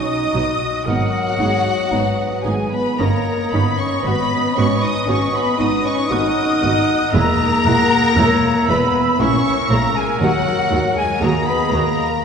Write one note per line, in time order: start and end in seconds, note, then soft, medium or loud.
0.00 0.69 D#4 medium
0.00 0.87 F#4 medium
0.00 0.86 D#5 medium
0.00 2.66 D#5 medium
0.00 0.85 D#6 medium
0.00 0.89 D#6 medium
0.33 0.41 B1 medium
0.33 0.43 B2 medium
0.33 0.42 F#3 soft
0.33 0.42 D#4 soft
0.85 0.94 G#1 medium
0.85 0.96 G#2 medium
0.85 2.42 F#3 medium
0.85 0.95 B3 medium
0.85 0.95 D#4 medium
0.85 2.45 F#4 medium
0.85 1.42 A#4 medium
0.85 2.45 F#5 loud
0.85 2.21 F#5 medium
1.38 1.46 G#1 medium
1.38 1.49 G#2 medium
1.38 1.47 B3 medium
1.38 1.47 D#4 medium
1.38 1.74 G#4 medium
1.91 2.00 G#1 medium
1.91 2.02 G#2 medium
1.91 2.00 B3 medium
1.91 1.99 D#4 medium
1.91 3.04 B4 medium
2.44 2.53 G#1 medium
2.44 2.55 G#2 medium
2.44 2.71 G#3 medium
2.44 2.54 B3 soft
2.44 2.53 D#4 soft
2.44 2.72 G#4 medium
2.44 2.72 G#5 medium
2.44 2.76 G#5 medium
2.70 2.98 B3 medium
2.70 2.97 B4 medium
2.70 2.98 B5 medium
2.74 3.03 B5 medium
2.98 3.07 G1 medium
2.98 3.08 G2 medium
2.98 3.52 A#3 medium
2.98 3.07 C#4 medium
2.98 3.06 D#4 medium
2.98 3.51 A#4 medium
2.98 6.13 D#5 medium
2.98 3.53 A#5 medium
2.98 3.56 A#5 medium
3.02 4.07 C#5 medium
3.51 3.60 G1 medium
3.51 3.61 G2 medium
3.51 3.79 B3 medium
3.51 3.61 C#4 medium
3.51 3.60 D#4 medium
3.51 3.78 B4 medium
3.51 3.79 B5 medium
3.51 3.80 B5 medium
3.77 4.04 C#4 medium
3.77 4.05 C#5 medium
3.77 4.04 C#6 medium
3.77 4.08 C#6 medium
4.02 4.13 G#1 medium
4.02 4.56 B3 medium
4.02 4.13 B3 medium
4.02 4.13 F#4 medium
4.02 4.55 B4 medium
4.02 4.56 B5 loud
4.06 4.14 G#2 medium
4.06 6.13 B4 medium
4.06 4.58 B5 medium
4.54 4.66 G#1 medium
4.54 4.66 G#2 medium
4.54 4.65 B3 medium
4.54 4.81 C#4 medium
4.54 4.65 F#4 medium
4.54 4.83 C#5 medium
4.58 4.83 C#6 medium
4.58 4.86 C#6 medium
4.80 5.07 D#4 medium
4.80 5.08 D#5 medium
4.80 5.09 D#6 loud
4.85 5.12 D#6 medium
5.05 5.16 G#1 medium
5.05 5.17 G#2 medium
5.05 5.15 B3 medium
5.05 5.33 C#4 medium
5.05 5.15 F#4 medium
5.05 5.34 C#5 medium
5.11 5.35 C#6 medium
5.11 5.38 C#6 medium
5.32 5.58 B3 medium
5.32 5.60 B4 medium
5.32 5.61 B5 medium
5.37 5.61 B5 medium
5.58 5.68 G#1 medium
5.58 5.68 G#2 medium
5.58 5.67 B3 medium
5.58 5.84 D#4 medium
5.58 5.67 F#4 medium
5.58 5.85 D#5 medium
5.58 5.85 D#6 medium
5.62 5.90 D#6 medium
5.83 6.10 C#4 medium
5.83 6.11 C#5 medium
5.83 6.11 C#6 medium
5.89 6.14 C#6 medium
6.07 6.18 B3 medium
6.07 7.12 D#4 loud
6.07 6.17 F#4 medium
6.07 7.13 D#5 medium
6.07 7.13 D#6 medium
6.11 6.19 G#1 medium
6.11 6.20 G#2 medium
6.11 7.14 A#4 medium
6.11 6.62 F#5 medium
6.11 6.87 D#6 medium
6.60 6.71 G#1 medium
6.60 6.69 G#2 medium
6.60 6.69 B3 medium
6.60 6.68 F#4 medium
6.60 7.14 F#5 medium
7.12 7.22 E1 medium
7.12 7.21 E2 medium
7.12 7.22 G#3 medium
7.12 8.65 A#3 medium
7.12 7.21 E4 medium
7.12 8.19 G#4 medium
7.12 8.68 A#4 loud
7.12 7.67 E5 medium
7.12 8.65 A#5 loud
7.12 8.72 A#5 loud
7.64 7.75 E1 medium
7.64 7.72 E2 medium
7.64 7.74 G#3 medium
7.64 7.74 E4 medium
7.64 8.19 F#5 medium
8.16 8.26 E1 medium
8.16 8.24 E2 medium
8.16 8.26 G#3 medium
8.16 8.26 E4 medium
8.16 8.71 C#5 medium
8.16 10.95 E5 medium
8.67 8.77 E1 medium
8.67 8.75 E2 medium
8.67 8.77 G#3 medium
8.67 9.19 B3 medium
8.67 8.77 E4 medium
8.67 9.19 B4 medium
8.67 9.02 B4 medium
8.67 9.20 B5 medium
8.67 9.21 B5 medium
9.19 9.29 A#1 medium
9.19 9.27 A#2 medium
9.19 9.29 G#3 medium
9.19 9.54 C#4 medium
9.19 9.28 E4 medium
9.19 11.25 A#4 medium
9.19 9.71 C#5 medium
9.19 9.72 C#6 medium
9.19 9.71 C#6 loud
9.70 9.78 A#1 medium
9.70 9.78 A#2 medium
9.70 9.79 G#3 medium
9.70 9.94 A#3 medium
9.70 9.80 E4 medium
9.70 9.95 A#4 medium
9.70 9.97 A#5 medium
9.70 9.96 A#5 loud
9.92 10.19 G#3 medium
9.92 10.21 G#5 medium
9.97 10.21 G#4 medium
9.97 10.22 G#5 medium
10.19 10.28 D#2 medium
10.19 10.29 D#2 medium
10.19 10.96 F#3 medium
10.19 10.31 F#3 medium
10.19 10.95 F#4 medium
10.19 10.95 F#5 loud
10.19 11.00 F#5 medium
10.23 10.31 F#4 medium
10.71 10.79 D#2 medium
10.71 10.80 D#2 medium
10.71 10.80 F#3 medium
10.71 10.80 F#4 medium
10.95 11.21 G#3 medium
10.95 11.22 G#4 medium
10.95 11.22 G#5 loud
10.95 11.25 G#5 medium
11.20 11.29 D#2 medium
11.20 11.30 D#2 medium
11.20 11.32 F#3 medium
11.20 11.48 A#3 medium
11.20 11.32 F#4 medium
11.20 12.25 G#4 medium
11.20 11.48 A#4 medium
11.20 12.20 D#5 medium
11.20 11.47 A#5 medium
11.20 11.50 A#5 medium
11.46 11.72 B3 medium
11.46 11.73 B4 medium
11.46 11.72 B5 medium
11.46 11.77 B5 medium
11.72 11.80 D#2 medium
11.72 11.81 D#2 medium
11.72 11.82 F#3 medium
11.72 12.25 A#3 medium
11.72 11.83 F#4 medium
11.72 12.24 A#4 medium
11.72 12.24 A#5 medium
11.72 12.25 A#5 medium